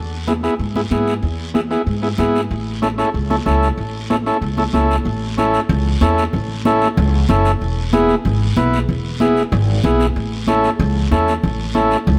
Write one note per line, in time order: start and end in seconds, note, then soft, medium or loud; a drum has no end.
0.00 0.46 E2 medium
0.27 0.33 B3 medium
0.27 0.33 E4 medium
0.27 0.33 G#4 medium
0.27 high conga medium
0.27 short guiro medium
0.43 0.54 B3 medium
0.43 0.55 E4 medium
0.43 0.55 G#4 medium
0.43 short guiro medium
0.59 0.85 G#2 medium
0.59 long guiro medium
0.75 0.81 B3 medium
0.75 0.81 E4 medium
0.75 0.81 G#4 medium
0.75 high conga medium
0.91 1.17 G#2 medium
0.91 1.14 B3 medium
0.91 1.14 E4 medium
0.91 1.14 G#4 medium
0.91 high conga medium
0.91 short guiro medium
1.07 short guiro medium
1.23 1.74 E2 medium
1.23 long guiro medium
1.54 1.60 B3 medium
1.54 1.60 E4 medium
1.54 1.60 G#4 medium
1.54 high conga medium
1.54 short guiro medium
1.71 1.82 B3 medium
1.71 1.82 E4 medium
1.71 1.82 G#4 medium
1.71 short guiro medium
1.86 2.12 G#2 medium
1.86 long guiro medium
2.02 2.08 B3 medium
2.02 2.08 E4 medium
2.02 2.08 G#4 medium
2.18 2.44 G#2 medium
2.18 2.41 B3 medium
2.18 2.41 E4 medium
2.18 2.41 G#4 medium
2.18 high conga medium
2.18 short guiro medium
2.36 short guiro medium
2.51 3.02 A1 medium
2.51 long guiro medium
2.82 2.88 C#4 medium
2.82 2.88 E4 medium
2.82 2.88 A4 medium
2.82 high conga medium
2.82 short guiro medium
2.98 3.09 C#4 medium
2.98 3.10 E4 medium
2.98 3.10 A4 medium
2.98 short guiro medium
3.14 3.40 C#2 medium
3.14 long guiro medium
3.30 3.36 C#4 medium
3.30 3.36 E4 medium
3.30 3.36 A4 medium
3.30 high conga medium
3.46 3.72 C#2 medium
3.46 3.68 C#4 medium
3.46 3.69 E4 medium
3.46 3.69 A4 medium
3.46 high conga medium
3.46 short guiro medium
3.63 short guiro medium
3.78 4.29 A1 medium
3.78 long guiro medium
4.10 4.16 C#4 medium
4.10 4.16 E4 medium
4.10 4.16 A4 medium
4.10 high conga medium
4.10 short guiro medium
4.26 4.37 C#4 medium
4.26 4.37 E4 medium
4.26 4.38 A4 medium
4.26 short guiro medium
4.42 4.67 C#2 medium
4.42 long guiro medium
4.58 4.63 C#4 medium
4.58 4.64 E4 medium
4.58 4.64 A4 medium
4.58 high conga medium
4.73 4.99 C#2 medium
4.73 4.96 C#4 medium
4.73 4.96 E4 medium
4.73 4.97 A4 medium
4.73 high conga medium
4.73 short guiro medium
4.91 short guiro medium
5.05 5.56 A1 medium
5.05 high conga soft
5.05 long guiro medium
5.38 5.60 C#4 medium
5.38 5.60 E4 medium
5.38 5.60 A4 medium
5.38 high conga medium
5.38 short guiro medium
5.54 short guiro medium
5.69 5.95 C#2 loud
5.69 high conga soft
5.69 low conga medium
5.69 long guiro medium
6.01 6.27 E2 loud
6.01 6.24 C#4 medium
6.01 6.24 E4 medium
6.01 6.24 A4 medium
6.01 high conga medium
6.01 short guiro medium
6.18 short guiro medium
6.33 6.84 A1 medium
6.33 high conga soft
6.33 low conga medium
6.33 long guiro medium
6.65 6.88 C#4 medium
6.65 6.88 E4 medium
6.65 6.88 A4 loud
6.65 high conga medium
6.65 short guiro medium
6.82 short guiro medium
6.97 7.23 C#2 loud
6.97 high conga soft
6.97 low conga medium
6.97 long guiro medium
7.29 7.55 F#1 medium
7.29 7.51 C#4 medium
7.29 7.52 E4 medium
7.29 7.52 A4 medium
7.29 high conga medium
7.29 low conga medium
7.29 short guiro medium
7.45 short guiro medium
7.61 8.12 E1 medium
7.61 high conga soft
7.61 long guiro medium
7.93 8.15 B3 medium
7.93 8.15 E4 medium
7.93 8.16 G#4 loud
7.93 high conga medium
7.93 short guiro medium
8.09 short guiro medium
8.25 8.50 G#1 loud
8.25 high conga soft
8.25 low conga medium
8.25 long guiro medium
8.56 8.82 B1 loud
8.56 8.79 B3 medium
8.56 8.79 E4 medium
8.56 8.79 B4 medium
8.56 high conga medium
8.56 short guiro medium
8.73 short guiro medium
8.89 9.40 E1 medium
8.89 high conga soft
8.89 low conga medium
8.89 long guiro medium
9.20 9.42 B3 medium
9.20 9.43 E4 medium
9.20 9.43 G#4 medium
9.20 high conga medium
9.20 short guiro medium
9.37 short guiro medium
9.52 9.78 G#1 loud
9.52 high conga soft
9.52 low conga medium
9.52 long guiro medium
9.84 10.10 B1 medium
9.84 10.06 B3 medium
9.84 10.07 E4 medium
9.84 10.07 G#4 medium
9.84 high conga medium
9.84 low conga medium
9.84 short guiro medium
10.00 short guiro medium
10.16 10.67 A1 medium
10.16 high conga soft
10.16 long guiro medium
10.47 10.70 C#4 medium
10.47 10.70 E4 medium
10.47 10.70 A4 loud
10.47 high conga medium
10.47 short guiro medium
10.64 short guiro medium
10.79 11.05 C#2 loud
10.79 high conga soft
10.79 low conga medium
10.79 long guiro medium
11.11 11.37 E2 medium
11.11 11.34 C#4 medium
11.11 11.34 E4 medium
11.11 11.34 A4 medium
11.11 high conga medium
11.11 short guiro medium
11.28 short guiro medium
11.43 11.94 A1 medium
11.43 high conga soft
11.43 low conga medium
11.43 long guiro medium
11.75 11.97 C#4 medium
11.75 11.97 E4 medium
11.75 11.97 A4 medium
11.75 high conga medium
11.75 short guiro medium
11.91 short guiro medium
12.07 12.19 C#2 loud
12.07 high conga soft
12.07 low conga medium
12.07 long guiro medium